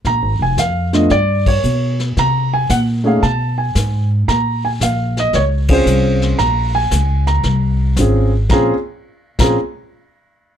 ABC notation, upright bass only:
X:1
M:4/4
L:1/8
Q:"Swing" 1/4=114
K:Bbm
V:1 name="Upright bass" clef=bass
(3B,,, A,,, F,,, F,,2 =G,,2 =B,,2 | C,2 B,,2 _C,2 A,,2 | B,,2 B,,,2 D,,2 C,,2 | B,,,2 D,,2 C,,2 A,,,2 |
B,,, z2 B,,, z4 |]